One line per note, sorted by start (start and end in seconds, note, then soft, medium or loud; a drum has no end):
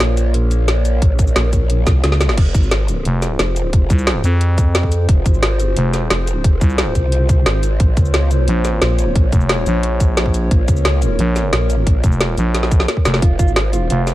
0.00 1.01 A#1 loud
0.00 2.34 A#3 medium
0.00 2.34 F4 medium
0.00 2.35 A#4 medium
0.00 2.34 C#5 medium
0.00 snare loud
0.00 closed hi-hat medium
0.17 closed hi-hat medium
0.17 cabasa medium
0.34 closed hi-hat medium
0.51 closed hi-hat medium
0.51 cabasa medium
0.68 snare loud
0.68 closed hi-hat medium
0.85 closed hi-hat medium
0.85 cabasa medium
1.02 1.35 A#1 medium
1.02 kick loud
1.02 closed hi-hat loud
1.19 kick loud
1.19 closed hi-hat medium
1.19 cabasa medium
1.27 cabasa soft
1.36 1.85 A#1 loud
1.36 snare loud
1.36 closed hi-hat medium
1.53 kick medium
1.53 closed hi-hat medium
1.53 cabasa medium
1.70 closed hi-hat loud
1.87 2.02 C2 loud
1.87 kick loud
1.87 snare medium
1.87 closed hi-hat medium
1.87 cabasa medium
2.04 2.36 C#2 loud
2.04 snare medium
2.04 closed hi-hat medium
2.12 snare medium
2.21 snare loud
2.21 closed hi-hat medium
2.21 cabasa medium
2.29 snare medium
2.37 2.53 F1 loud
2.37 13.18 F4 medium
2.37 7.76 G#4 medium
2.37 10.47 C5 loud
2.37 kick loud
2.37 closed hi-hat loud
2.37 crash loud
2.54 3.04 G#1 loud
2.54 kick loud
2.54 closed hi-hat medium
2.54 cabasa medium
2.63 cabasa soft
2.71 snare loud
2.71 closed hi-hat loud
2.88 closed hi-hat medium
2.88 cabasa medium
3.05 3.38 F1 medium
3.05 closed hi-hat medium
3.22 snare soft
3.22 closed hi-hat medium
3.22 cabasa medium
3.39 3.72 F1 loud
3.39 snare loud
3.39 closed hi-hat medium
3.56 closed hi-hat medium
3.56 cabasa medium
3.73 3.89 F1 loud
3.73 kick loud
3.73 closed hi-hat loud
3.90 4.23 C2 loud
3.90 kick loud
3.90 closed hi-hat medium
3.90 cabasa medium
3.99 cabasa soft
4.07 snare loud
4.07 closed hi-hat medium
4.24 5.07 F2 loud
4.24 closed hi-hat medium
4.24 cabasa medium
4.41 closed hi-hat loud
4.58 kick loud
4.58 closed hi-hat medium
4.58 cabasa medium
4.75 snare loud
4.75 closed hi-hat loud
4.83 kick medium
4.92 closed hi-hat medium
4.92 cabasa medium
5.09 5.24 F1 medium
5.09 kick loud
5.09 closed hi-hat loud
5.26 5.75 G#1 loud
5.26 kick loud
5.26 closed hi-hat medium
5.26 cabasa medium
5.34 cabasa soft
5.43 snare loud
5.43 closed hi-hat loud
5.60 closed hi-hat medium
5.60 cabasa medium
5.77 6.09 F1 loud
5.77 closed hi-hat loud
5.94 snare soft
5.94 closed hi-hat medium
5.94 cabasa medium
6.10 6.43 F1 loud
6.10 snare loud
6.10 closed hi-hat loud
6.27 closed hi-hat medium
6.27 cabasa medium
6.44 6.60 F1 loud
6.44 kick loud
6.44 closed hi-hat loud
6.61 6.94 C2 loud
6.61 kick loud
6.61 closed hi-hat medium
6.61 cabasa medium
6.70 cabasa soft
6.78 snare loud
6.78 closed hi-hat medium
6.95 7.45 C2 medium
6.95 kick medium
6.95 closed hi-hat medium
6.95 cabasa medium
7.12 closed hi-hat medium
7.29 kick loud
7.29 closed hi-hat medium
7.29 cabasa medium
7.46 7.79 G#1 loud
7.46 snare loud
7.46 closed hi-hat medium
7.63 closed hi-hat medium
7.63 cabasa medium
7.80 7.96 A#1 medium
7.80 13.18 A#3 medium
7.80 13.18 C#5 medium
7.80 kick loud
7.80 closed hi-hat medium
7.97 8.46 C#2 medium
7.97 kick loud
7.97 closed hi-hat medium
7.97 cabasa medium
8.05 cabasa soft
8.14 snare loud
8.14 closed hi-hat medium
8.31 closed hi-hat medium
8.31 cabasa medium
8.48 8.80 A#1 medium
8.48 closed hi-hat medium
8.65 snare soft
8.65 closed hi-hat medium
8.65 cabasa medium
8.82 9.14 A#1 loud
8.82 snare loud
8.82 closed hi-hat medium
8.99 closed hi-hat medium
8.99 cabasa medium
9.15 9.31 A#1 medium
9.15 kick loud
9.15 closed hi-hat medium
9.32 9.65 F1 loud
9.32 kick loud
9.32 closed hi-hat medium
9.32 cabasa medium
9.41 cabasa soft
9.49 snare loud
9.49 closed hi-hat medium
9.66 10.50 A#1 loud
9.66 closed hi-hat medium
9.66 cabasa medium
9.83 closed hi-hat medium
10.00 kick loud
10.00 closed hi-hat medium
10.00 cabasa medium
10.17 snare loud
10.17 closed hi-hat medium
10.26 kick medium
10.34 closed hi-hat medium
10.34 cabasa medium
10.51 10.67 A#1 loud
10.51 13.20 A#4 medium
10.51 kick loud
10.51 closed hi-hat medium
10.68 11.18 C#2 loud
10.68 kick loud
10.68 closed hi-hat medium
10.68 cabasa medium
10.77 cabasa soft
10.85 snare loud
10.85 closed hi-hat medium
11.02 closed hi-hat medium
11.02 cabasa medium
11.19 11.51 A#1 loud
11.19 closed hi-hat medium
11.36 snare soft
11.36 closed hi-hat medium
11.36 cabasa medium
11.53 11.85 A#1 loud
11.53 snare loud
11.53 closed hi-hat medium
11.70 closed hi-hat medium
11.70 cabasa medium
11.87 12.02 A#1 loud
11.87 kick loud
11.87 closed hi-hat loud
12.04 12.36 F1 loud
12.04 kick loud
12.04 closed hi-hat medium
12.04 cabasa medium
12.12 cabasa soft
12.21 snare loud
12.21 closed hi-hat loud
12.38 12.87 A#1 loud
12.38 closed hi-hat medium
12.38 cabasa medium
12.55 snare medium
12.55 closed hi-hat medium
12.63 snare medium
12.71 kick loud
12.71 closed hi-hat medium
12.71 cabasa medium
12.80 snare medium
12.88 snare medium
12.88 closed hi-hat loud
12.97 kick medium
13.05 13.21 F1 loud
13.05 snare loud
13.05 closed hi-hat medium
13.05 cabasa medium
13.14 snare medium
13.22 13.38 F1 medium
13.22 13.38 F4 medium
13.22 14.14 F4 medium
13.22 14.14 G#4 medium
13.22 14.14 C5 medium
13.22 kick loud
13.22 closed hi-hat loud
13.39 13.89 G#1 loud
13.39 13.50 F4 loud
13.39 kick loud
13.39 closed hi-hat medium
13.39 cabasa medium
13.48 cabasa soft
13.56 snare loud
13.56 closed hi-hat loud
13.73 13.89 F4 medium
13.73 closed hi-hat medium
13.73 cabasa medium
13.90 14.14 F1 medium
13.90 14.01 F4 loud
13.90 closed hi-hat loud
14.07 snare soft
14.07 closed hi-hat medium
14.07 cabasa medium